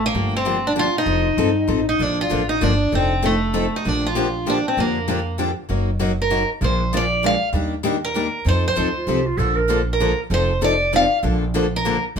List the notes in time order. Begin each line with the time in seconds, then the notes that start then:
Already playing: A1
0.06 A#3
0.15 G1 D3 F3 A#3 D4 G4
0.37 C4
0.45 D3 F3 A#3 D4 G4
0.67 D4
0.76 D3 F3 A#3 D4 F4 G4
0.98 D#4
1.06 F1 F3 C4 D#4 A4
1.37 G1 F3 C4 D#4 A4
1.68 A1 F3 C4 D#4 A4
1.89 D#4
1.99 A#1 D3 F3 A#3 D4 A4
2.21 F4
2.30 A1 D3 F3 A#3 D4 A4
2.49 D#4
2.61 G1 D3 F3 A#3 D4 A4
2.92 F1 F3 C4 D#4 A4
3.22 F3 A3 C4 D#4 A4
3.53 F3 C4 D#4 A4
3.76 D#4
3.85 A#1 D3 F3 A#3 D4 G4
4.06 F4
4.15 D3 F3 A#3 D4 G4
4.46 D3 F3 A#3 D4 G4
4.68 C4
4.77 F2 D3 F3 A#3 D4 G4
5.08 D3 F3 A#3 D4 G4
5.38 D3 F3 A#3 D4 G4
5.69 F#1 F#3 A#3 C#4 D#4 F#4 A#4
5.99 F#3 A#3 C#4 D#4 F#4 A#4
6.22 A#4
6.30 F#3 A#3 C#4 D#4 F#4 A#4
6.61 A#1 D3 F3 G#3 A#3 D4 F4 G#4 A#4 C5
6.93 D3 F3 G#3 A#3 D4 F4 G#4 A#4
6.97 D5
7.23 D3 F3 G#3 A#3 D4 F4 G#4 A#4 F5
7.53 D#2 D#3 G3 A#3 D4 G4
7.83 D#3 G3 A#3 D4 G4
8.05 A#4
8.16 D#3 G3 A#3 D4 G4
8.45 F2 F3 C4 D#4 A4 C5
8.68 C5
8.76 D2 F3 C4 D#4 A4
8.97 F4
9.07 C2 F3 C4 D#4 G4 A4
9.26 F4
9.37 A#1 D3 F3 A#3 D4 A4
9.56 A#4
9.69 D3 F3 A#3 D4 A4
9.93 A#4
10.00 D3 F3 A#3 D4 A4
10.30 F1 F3 C4 D#4 A4 C5
10.62 F3 C4 D#4 A4 D5
10.93 F3 C4 D#4 A4 F5
11.23 A#1 D3 F3 A#3 D4 A4
11.54 D3 F3 A#3 D4 A4
11.76 A#4
11.85 D3 F3 A#3 D4 A4
12.16 F1 D3